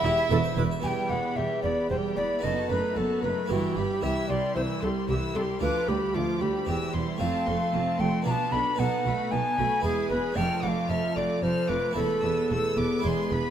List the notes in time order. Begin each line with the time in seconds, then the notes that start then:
Already playing: E4 E5
0.04 E1 E2 E4 G4
0.17 E4
0.30 E1 E2 E4 A4 B4
0.44 C5
0.57 E1 E2 E4 B4
0.71 E5
0.80 E2 B3 E4 G4 G5 G#5
0.84 E1 E2 G3 G4 G5
1.10 E1 E2 B3 E4 F#5 B5
1.36 E1 E2 G3 G4 E5 G5
1.63 E1 E2 B3 E4 D5 B5
1.89 E1 E2 G3 G4 C5 G5
2.16 E1 E2 B3 E4 D5 B5
2.39 B3 D#4 A4
2.43 F#1 F#2 B3 F#4 D#5 A5
2.69 F#1 F#2 A3 D#4 B4 B5
2.95 F#1 F#2 B3 F#4 A4 A5
3.23 F#1 F#2 A3 D#4 B4 B5
3.46 G2 B3 E4 G4 G5
3.50 G1 G2 E3 F#4
3.76 G1 G2 G3 G4 B5
4.01 C2 E3 E4 G4 E5 E6
4.29 C2 G3 G4 D5 C6
4.55 C2 E3 E4 C5 E6
4.82 C2 G3 G4 A4 C6
5.08 C2 E3 E4 G4 E6
5.35 C2 G3 G4 A4 C6
5.59 D2 F3 D4 F4 B4 D6
5.88 D2 G3 G4 B5
6.14 D2 F3 F4 D6
6.41 D2 G3 G4 B5
6.65 E1 E2 E3 C4 G4 E6
6.94 E1 E2 G3 E4 C6
7.16 A3 C4 F4 F5 A5
7.20 F1 F2 C4
7.46 F1 F2 A3 A4 C6
7.73 F1 F2 C4 F4 A5
7.99 F1 F2 A3 A4 G5 C6
8.22 B2 B3 D4 F4 A5
8.26 B1 B2 B3 F4 A#5
8.31 A5
8.52 B1 B2 D4 A4 B5
8.75 B2 B3 D#4 A4
8.79 B1 B2 B3 D#4 F#5 A5
9.04 B1 B2 A3 F#4 B5
9.31 B1 B2 B3 D#4 G#5 A5
9.57 B1 B2 A3 F#4 B5
9.80 E2 B3 E4 G#4
9.84 E1 E2 G#3 E4 G#4 G#5
10.10 E1 E2 B3 G#4 B4 B5
10.32 F2 A3 D4 A4 G5
10.37 F1 F2 F3 A4 F6
10.63 F1 F2 A3 F4 F#5 D6
10.68 F5
10.89 F1 F2 F3 A4 E5 F6
11.16 F1 F2 A3 F4 D5 D6
11.42 F1 F2 F3 A4 C5 F6
11.69 F1 F2 A3 F4 B4 D6
11.91 B3 E4 A4
11.96 E1 E2 A3 A4 B5
12.23 E1 E2 B3 B4 E6
12.50 E1 E2 A3 A4 E6
12.77 E1 E2 B3 B4 D6
12.99 B3 E4 G#4
13.03 E1 E2 G#3 G#4 C6
13.31 E1 E2 B3 B4 B5